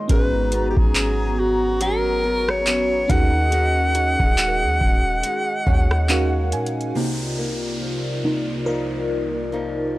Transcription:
Already playing: nylon-string guitar D#3 G#3 C#4, synth pluck D#4
0.08 808-style bass G#1, nylon-string guitar G#2, fm electric piano B3 C#4 F#4, analog synth pad B3 F#4 A#5, alto saxophone B4, kick, closed hi-hat
0.12 fm electric piano G#4
0.52 nylon-string guitar B3, closed hi-hat
0.70 alto saxophone G4
0.77 808-style bass G#1, alto saxophone G#4, kick
0.95 nylon-string guitar F#3, clap, closed hi-hat
1.39 alto saxophone F#4
1.81 nylon-string guitar F#3, alto saxophone A#4, closed hi-hat
2.24 nylon-string guitar B3
2.49 alto saxophone C#5, cross-stick
2.67 nylon-string guitar F#3 B3 C#4, clap, closed hi-hat
3.08 808-style bass D#2, nylon-string guitar D#3, fm electric piano C#4 D#4 F#4, analog synth pad G#4 D#5, alto saxophone F#5, kick, closed hi-hat
3.12 fm electric piano G#4
3.52 nylon-string guitar D#3, closed hi-hat
3.95 nylon-string guitar C#4, synth pluck D#4, closed hi-hat
4.20 808-style bass D#1, kick
4.25 synth pluck G#4
4.38 nylon-string guitar G#3, clap, closed hi-hat
4.48 synth pluck A#4
4.63 808-style bass D#2
4.81 808-style bass D#1, kick
5.23 nylon-string guitar G#3, closed hi-hat
5.67 808-style bass D#2, nylon-string guitar C#4, fm electric piano F#5, kick
5.91 cross-stick
6.09 nylon-string guitar G#3 C#4 F#4, fm electric piano C#4 D#4 F#4 A#4 F5, clap, closed hi-hat
6.52 808-style bass A#2, fm electric piano G#5, closed hi-hat
6.66 closed hi-hat
6.81 closed hi-hat
6.95 analog synth pad C2 C3 D#4 F4 A#4 D5, nylon-string guitar C3, fm electric piano C3 A#3 D#4, downlifter
7.38 nylon-string guitar A#3
7.81 nylon-string guitar F3
8.24 fm electric piano C3 A#3 D#4
8.66 nylon-string guitar F3 A#3 D#4, fm electric piano A#4
9.52 nylon-string guitar F3 A#3 D#4

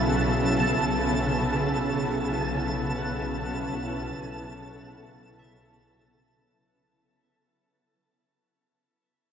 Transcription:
Already playing: double bass section B1, ambient pad C#3 F#3 B3 E4 A4, synth texture A5
0.60 clean electric guitar A5
2.98 clean electric guitar F#5
5.39 clean electric guitar E5

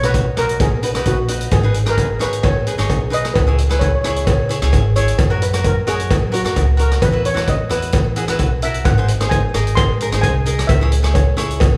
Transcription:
Already playing: upright bass B1
0.03 cavaquinho D#4 F#4 C#5, steel pan B4, cross-stick, closed hi-hat
0.14 kick, closed hi-hat, cowbell
0.37 upright bass B1, cavaquinho D#4 F#4 A#4, steel pan A#4, cross-stick, closed hi-hat
0.49 closed hi-hat
0.60 steel pan G#4, kick, closed hi-hat, cowbell
0.72 upright bass B2
0.83 cavaquinho D#4 F#4 B4, closed hi-hat
0.94 upright bass B1, cavaquinho D#4 F#4 B4, cross-stick, closed hi-hat
1.05 upright bass A#1, steel pan F#4, kick, closed hi-hat, cowbell
1.28 cavaquinho D#4 F#4 B4, closed hi-hat
1.41 closed hi-hat
1.51 upright bass G#1, steel pan G#4, kick, closed hi-hat, cowbell
1.63 cavaquinho D#4 G#4 B4
1.74 closed hi-hat
1.86 cavaquinho D#4 G#4 B4, steel pan A#4, cross-stick, closed hi-hat
1.98 kick, closed hi-hat, cowbell
2.19 upright bass G#1, cavaquinho D#4 G#4 C#5, steel pan B4, cross-stick, closed hi-hat
2.33 closed hi-hat
2.43 steel pan C#5, kick, closed hi-hat, cowbell
2.55 upright bass G#2
2.67 cavaquinho D#4 G#4 B4, closed hi-hat
2.77 upright bass G#1, cavaquinho D#4 G#4 C#5, cross-stick, closed hi-hat
2.89 upright bass B1, kick, closed hi-hat, cowbell
3.10 cavaquinho D#4 G#4 B4, steel pan D#5, closed hi-hat
3.25 cross-stick, closed hi-hat
3.34 upright bass C#2, steel pan B4, kick, closed hi-hat, cowbell
3.47 cavaquinho E4 G#4 C#5
3.58 closed hi-hat
3.69 cavaquinho E4 G#4 B4, cross-stick, closed hi-hat
3.79 steel pan C#5, kick, closed hi-hat, cowbell
3.88 steel pan C#5
3.95 steel pan C#5
4.02 upright bass C#2, cavaquinho E4 G#4, steel pan C#5, cross-stick, closed hi-hat
4.06 cavaquinho C#5, steel pan C#5
4.16 steel pan C#5, closed hi-hat
4.25 steel pan C#5, kick, closed hi-hat, cowbell
4.33 steel pan C#5
4.39 upright bass C#3
4.49 cavaquinho E4 G#4 C#5, closed hi-hat
4.62 upright bass C#2, cavaquinho E4 G#4 C#5, cross-stick, closed hi-hat
4.73 upright bass G#1, kick, closed hi-hat, cowbell
4.96 cavaquinho E4 G#4 C#5, steel pan C#5, closed hi-hat
5.08 closed hi-hat
5.18 upright bass F#2, kick, closed hi-hat, cowbell
5.30 cavaquinho F#4 A#4 C#5
5.42 steel pan B4, closed hi-hat
5.53 cavaquinho F#4 A#4 C#5, cross-stick, closed hi-hat
5.64 steel pan A#4, kick, closed hi-hat, cowbell
5.87 upright bass F#2, cavaquinho F#4 A#4 C#5, steel pan G#4, cross-stick, closed hi-hat
5.99 closed hi-hat
6.11 kick, closed hi-hat, cowbell
6.23 upright bass F#3
6.32 cavaquinho F#4 A#4 C#5, steel pan F#4, closed hi-hat
6.44 upright bass F#2, cavaquinho F#4 A#4 C#5, cross-stick, closed hi-hat
6.56 upright bass C#2, kick, closed hi-hat, cowbell
6.77 cavaquinho F#4 A#4 C#5, steel pan A#4, closed hi-hat
6.91 cross-stick, closed hi-hat
7.02 upright bass E2, steel pan B4, kick, closed hi-hat, cowbell
7.12 cavaquinho E4 F#4 B4
7.25 steel pan C#5, closed hi-hat
7.34 cavaquinho E4 F#4 B4, cross-stick, closed hi-hat
7.47 steel pan D#5, kick, closed hi-hat, cowbell
7.69 upright bass E2, cavaquinho E4 F#4 B4, cross-stick, closed hi-hat
7.82 closed hi-hat
7.92 kick, closed hi-hat, cowbell
8.05 upright bass E3
8.16 cavaquinho E4 F#4 G#4, closed hi-hat
8.28 upright bass E2, cavaquinho E4 F#4 B4, cross-stick, closed hi-hat
8.39 upright bass B1, kick, closed hi-hat, cowbell
8.62 cavaquinho E4 F#4 A#4, steel pan E5, closed hi-hat
8.74 closed hi-hat
8.85 upright bass G#1, steel pan F#5, kick, closed hi-hat, cowbell
8.98 cavaquinho D#4 G#4 C5
9.08 closed hi-hat
9.20 cavaquinho D#4 G#4 C5, cross-stick, closed hi-hat
9.29 steel pan G#5, kick, closed hi-hat, cowbell
9.54 upright bass G#1, cavaquinho D#4 G#4 A#4, cross-stick, closed hi-hat
9.67 closed hi-hat
9.75 steel pan C6, kick, closed hi-hat, cowbell
9.89 upright bass G#2
10.00 cavaquinho D#4 G#4 A#4, closed hi-hat
10.11 upright bass G#1, cavaquinho D#4 G#4 C5, cross-stick, closed hi-hat
10.21 upright bass C2, steel pan G#5, kick, closed hi-hat, cowbell
10.46 cavaquinho D#4 G#4 A#4, closed hi-hat
10.59 cross-stick, closed hi-hat
10.67 upright bass C#2, steel pan E5, kick, closed hi-hat, cowbell
10.81 cavaquinho E4 G#4 C#5
10.92 closed hi-hat
11.03 cavaquinho E4 G#4 C#5, cross-stick, closed hi-hat
11.14 steel pan C#5, kick, closed hi-hat, cowbell
11.37 upright bass C#2, cavaquinho E4 G#4 C#5, cross-stick, closed hi-hat
11.50 closed hi-hat
11.60 kick, closed hi-hat, cowbell
11.73 upright bass C#3

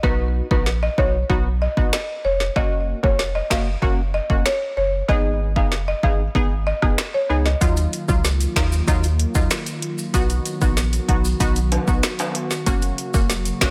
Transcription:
0.03 sub bass B1, synth stab B3 D#4 F#4, marimba B4, kick
0.51 sub bass A#1, synth stab B3 D#4 F#4, marimba B4, kick
0.66 snare
0.83 marimba D#5
0.98 sub bass B1, synth stab B3 D#4 F#4, marimba C#5, kick
1.29 sub bass B1, synth stab B3 D#4 F#4, kick
1.62 marimba D#5
1.77 sub bass G#1, synth stab B3 D#4 F#4, kick
1.93 marimba D#5, finger snap, snare
2.25 sub bass F1, marimba C#5
2.40 snare
2.56 sub bass F#1, synth stab A#3 C#4 F#4, marimba D#5, kick
3.03 sub bass F1, synth stab A#3 C#4 F#4, marimba C#5, kick
3.19 snare
3.35 marimba D#5
3.50 sub bass F#1, synth stab A#3 C#4 F#4, marimba F5, finger snap, kick, snare
3.82 sub bass F#1, synth stab A#3 C#4 F#4, kick
4.14 marimba D#5
4.30 sub bass F1, synth stab A#3 C#4 F#4, kick
4.46 marimba C#5, finger snap, snare
4.77 sub bass F#1, marimba C#5
5.08 sub bass G#1, synth stab B3 D#4 G#4, marimba D#5, kick
5.56 sub bass F#1, synth stab B3 D#4 G#4, marimba F5, kick
5.72 snare
5.88 marimba D#5
6.03 sub bass G#1, synth stab B3 D#4 G#4, marimba F5, kick
6.35 sub bass G#1, synth stab B3 D#4 G#4, kick
6.67 marimba D#5
6.82 sub bass F1, synth stab B3 D#4 G#4, kick, cross-stick
6.98 finger snap, snare
7.14 marimba C#5
7.29 sub bass C#2, synth stab B3 D#4 G#4
7.46 marimba D#5, snare
7.61 sub bass D#2, analog synth pad D#3 F#3 A#3 F4, synth stab F#3 D#4 F4, kick, closed hi-hat, maracas
7.77 closed hi-hat, maracas
7.93 closed hi-hat, maracas
8.08 sub bass C#2, synth stab F#3 D#4 F4, kick, maracas
8.25 snare, closed hi-hat, maracas
8.40 closed hi-hat, maracas
8.56 sub bass D#2, synth stab F#3 D#4 F4, finger snap, kick, snare, closed hi-hat
8.72 maracas
8.87 sub bass D#2, synth stab F#3 D#4 F4, kick, closed hi-hat, maracas
9.04 closed hi-hat, maracas
9.19 closed hi-hat
9.35 sub bass D#2, synth stab F#3 D#4 F4, kick, maracas
9.51 finger snap, snare, closed hi-hat, maracas
9.66 closed hi-hat, maracas
9.82 closed hi-hat
9.98 maracas
10.14 sub bass B1, analog synth pad D#3 F#3 B3 F#4, synth stab B3 D#4 F#4, kick, closed hi-hat, maracas
10.30 closed hi-hat, maracas
10.46 closed hi-hat, maracas
10.61 sub bass A#1, synth stab B3 D#4 F#4, kick, maracas
10.77 snare, closed hi-hat, maracas
10.93 closed hi-hat, maracas
11.09 sub bass B1, synth stab B3 D#4 F#4, kick, closed hi-hat
11.25 maracas
11.40 sub bass B1, synth stab B3 D#4 F#4, kick, closed hi-hat, maracas
11.56 closed hi-hat, maracas
11.72 closed hi-hat, high timbale
11.88 sub bass B1, synth stab B3 D#4 F#4, kick, maracas
12.03 finger snap, snare, closed hi-hat, maracas
12.19 closed hi-hat, high timbale, maracas
12.35 closed hi-hat
12.51 snare, maracas
12.66 sub bass F#1, analog synth pad C#3 F#3 A#3, synth stab A#3 C#4 F#4, kick, closed hi-hat, maracas
12.82 closed hi-hat, maracas
12.98 closed hi-hat, maracas
13.14 sub bass F1, synth stab A#3 C#4 F#4, kick, maracas
13.30 snare, closed hi-hat, maracas
13.45 closed hi-hat, maracas
13.61 sub bass F#1, synth stab A#3 C#4 F#4, finger snap, kick, snare, closed hi-hat

